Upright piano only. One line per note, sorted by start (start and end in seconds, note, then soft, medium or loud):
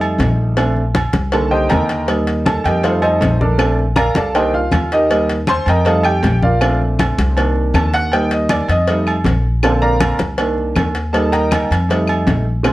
0.00 0.53 G3 medium
0.00 0.53 A3 medium
0.00 0.53 D#4 medium
0.57 0.82 A3 medium
0.57 0.82 C4 soft
0.57 0.83 D4 medium
1.32 2.05 D3 medium
1.32 2.04 D#3 medium
1.32 2.05 A#3 medium
1.32 1.51 A4 medium
1.32 1.51 A5 medium
1.51 1.70 G4 medium
1.51 1.70 C5 medium
1.51 1.68 D#5 medium
1.51 1.68 G5 medium
1.69 2.05 A#4 medium
1.69 2.05 D#5 medium
1.69 2.05 G5 medium
1.69 2.05 A#5 medium
2.07 2.79 G3 medium
2.07 2.80 A#3 medium
2.07 2.80 D#4 medium
2.46 2.64 A4 medium
2.46 2.64 A5 medium
2.65 2.84 G4 medium
2.65 2.84 A#4 medium
2.65 2.84 D#5 medium
2.65 2.83 G5 medium
2.83 3.55 G3 medium
2.83 3.56 A3 medium
2.83 3.01 D#4 medium
2.83 3.02 F4 medium
2.83 3.01 A4 medium
2.83 3.01 C5 medium
2.83 3.02 F5 medium
3.02 3.38 D#4 medium
3.02 3.37 A4 medium
3.02 3.38 C5 medium
3.02 3.37 D#5 medium
3.41 3.57 D4 medium
3.41 3.76 A4 medium
3.41 3.76 A#4 medium
3.41 3.76 D5 medium
3.58 3.84 A3 medium
3.58 3.84 C4 medium
3.58 3.84 D4 medium
3.96 4.15 A#4 medium
3.96 4.15 D5 medium
3.96 4.15 F5 medium
3.96 4.15 A#5 loud
4.17 4.35 A4 medium
4.17 4.35 D5 medium
4.17 4.35 F5 medium
4.17 4.35 A5 medium
4.35 4.60 D#3 medium
4.35 4.60 A#3 medium
4.35 4.60 D4 medium
4.35 4.54 G4 medium
4.35 4.53 C5 medium
4.35 4.53 D#5 medium
4.35 4.53 G5 medium
4.54 4.89 F4 medium
4.54 4.89 F5 loud
4.93 5.11 D#4 medium
4.93 5.27 G4 medium
4.93 5.28 A#4 medium
4.93 5.27 D#5 loud
5.11 5.36 G3 medium
5.11 5.36 A#3 medium
5.11 5.36 D#4 medium
5.49 5.67 C5 medium
5.49 5.67 C6 loud
5.69 5.86 A#4 medium
5.69 5.85 D#5 medium
5.69 5.86 G5 medium
5.69 5.86 A#5 medium
5.86 6.11 G3 medium
5.86 6.11 A3 medium
5.86 6.11 D#4 medium
5.86 6.05 A4 medium
5.86 6.04 D#5 medium
5.86 6.05 F5 medium
5.86 6.04 A5 medium
6.05 6.40 G4 medium
6.05 6.40 G5 loud
6.43 6.78 F4 medium
6.43 6.78 A#4 medium
6.43 6.78 D5 medium
6.43 6.78 F5 medium
6.61 7.33 A3 medium
6.61 7.33 C4 soft
6.61 7.33 D4 medium
7.37 8.08 D#3 medium
7.37 8.09 A#3 medium
7.37 8.09 D4 medium
7.74 7.93 A5 medium
7.94 8.12 F#5 loud
8.12 8.66 G3 medium
8.12 8.66 A#3 medium
8.12 8.67 D#4 medium
8.12 8.31 G5 medium
8.32 8.50 D#5 medium
8.51 8.69 D5 medium
8.70 9.05 D#5 medium
8.89 9.13 G3 medium
8.89 9.14 A3 medium
8.89 9.14 D#4 medium
9.63 10.17 D3 medium
9.63 10.17 A#3 medium
9.63 10.18 C4 medium
9.63 9.82 A4 medium
9.63 9.81 D5 medium
9.63 9.81 F5 medium
9.63 9.82 A5 medium
9.82 10.17 A#4 medium
9.82 10.17 D5 medium
9.82 10.17 F5 medium
9.82 10.17 A#5 loud
10.38 10.92 D#3 medium
10.38 10.93 A#3 medium
10.38 10.93 D4 medium
11.13 11.67 G3 medium
11.13 11.67 A#3 medium
11.13 11.67 D#4 medium
11.13 11.32 A4 medium
11.13 11.32 A5 medium
11.32 11.68 A#4 medium
11.32 11.68 D#5 medium
11.32 11.68 G5 medium
11.32 11.68 A#5 medium
11.89 12.43 G3 medium
11.89 12.43 A3 medium
11.89 12.43 D#4 medium
12.63 12.73 D3 medium
12.63 12.73 A3 medium
12.63 12.73 C4 medium